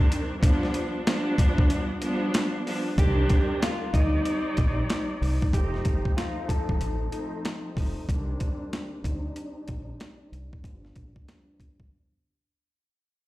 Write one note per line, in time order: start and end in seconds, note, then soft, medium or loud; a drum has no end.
0.00 0.33 D#3 loud
0.00 0.33 G3 loud
0.00 0.34 C4 loud
0.00 0.34 D4 loud
0.12 closed hi-hat medium
0.41 1.02 F3 loud
0.41 1.02 G3 medium
0.41 1.03 B3 medium
0.41 1.03 D4 loud
0.41 kick loud
0.41 closed hi-hat loud
0.63 snare soft
0.74 closed hi-hat medium
1.07 1.97 F3 loud
1.07 1.97 G3 medium
1.07 1.97 B3 medium
1.07 1.98 D4 loud
1.07 snare loud
1.07 closed hi-hat medium
1.38 kick medium
1.38 closed hi-hat medium
1.58 kick loud
1.70 closed hi-hat medium
2.01 2.62 F3 medium
2.01 2.62 G3 medium
2.01 2.62 B3 loud
2.01 2.63 D4 loud
2.01 closed hi-hat medium
2.34 snare loud
2.34 closed hi-hat medium
2.66 2.96 F3 medium
2.66 2.96 G3 medium
2.66 2.96 B3 medium
2.66 2.97 D4 medium
2.66 open hi-hat medium
2.97 3.24 C2 loud
2.97 3.88 D#3 loud
2.97 3.88 G3 medium
2.97 3.88 C4 medium
2.97 3.89 D4 loud
2.97 3.59 G4 loud
2.97 kick loud
2.97 closed hi-hat loud
3.29 kick loud
3.29 closed hi-hat medium
3.62 3.91 F4 medium
3.62 snare loud
3.62 closed hi-hat medium
3.94 4.19 D2 medium
3.94 5.44 G3 loud
3.94 5.45 C4 medium
3.94 5.44 D#4 loud
3.94 5.50 D#4 medium
3.94 5.45 D5 loud
3.94 kick medium
3.94 closed hi-hat medium
4.25 closed hi-hat medium
4.57 4.83 A#1 loud
4.57 kick loud
4.57 closed hi-hat medium
4.90 snare loud
4.90 closed hi-hat medium
5.22 5.38 C2 medium
5.22 open hi-hat medium
5.42 kick medium
5.53 5.79 F1 loud
5.53 6.13 F3 medium
5.53 6.13 A3 medium
5.53 6.14 C4 medium
5.53 6.14 D#4 loud
5.53 6.14 G4 medium
5.53 kick loud
5.53 closed hi-hat loud
5.74 snare soft
5.85 6.02 G1 medium
5.85 kick medium
5.85 closed hi-hat medium
6.05 kick medium
6.15 7.06 F3 loud
6.15 7.07 A3 medium
6.15 7.07 C4 medium
6.15 7.07 D#4 loud
6.15 6.46 F4 medium
6.15 snare loud
6.15 closed hi-hat medium
6.48 7.40 A4 medium
6.48 kick medium
6.48 closed hi-hat medium
6.69 6.79 F1 medium
6.69 kick loud
6.81 7.07 A1 medium
6.81 closed hi-hat loud
7.11 7.72 F3 loud
7.11 7.72 A3 medium
7.11 7.73 C4 medium
7.11 7.73 D#4 loud
7.11 closed hi-hat medium
7.45 snare loud
7.45 closed hi-hat medium
7.77 7.93 F1 medium
7.77 8.07 F3 medium
7.77 8.07 A3 medium
7.77 8.07 C4 medium
7.77 8.08 D#4 medium
7.77 kick loud
7.77 open hi-hat medium
8.07 8.34 C2 loud
8.07 8.98 D#3 loud
8.07 8.98 G3 medium
8.07 8.99 C4 medium
8.07 8.99 D4 loud
8.07 kick loud
8.07 closed hi-hat loud
8.40 kick loud
8.40 closed hi-hat medium
8.73 snare loud
8.73 closed hi-hat medium
9.04 9.30 D2 medium
9.04 10.55 G3 loud
9.04 10.55 C4 medium
9.04 10.55 D4 loud
9.04 10.54 D#4 loud
9.04 kick medium
9.04 closed hi-hat medium
9.36 closed hi-hat medium
9.68 9.94 A#1 medium
9.68 kick loud
9.68 closed hi-hat medium
10.00 snare loud
10.00 closed hi-hat medium
10.32 10.48 C2 medium
10.32 closed hi-hat medium
10.53 kick medium
10.62 10.90 G1 loud
10.62 11.23 F3 loud
10.62 11.23 G3 medium
10.62 11.24 B3 medium
10.62 11.24 D4 loud
10.62 kick loud
10.62 closed hi-hat loud
10.85 snare soft
10.96 11.12 A#1 medium
10.96 kick medium
10.96 closed hi-hat medium
11.16 kick medium
11.28 11.92 F3 medium
11.28 11.92 G3 medium
11.28 11.92 B3 medium
11.28 11.93 D4 loud
11.28 snare loud
11.28 closed hi-hat medium
11.60 kick medium
11.60 closed hi-hat medium
11.80 11.89 G1 medium
11.80 kick loud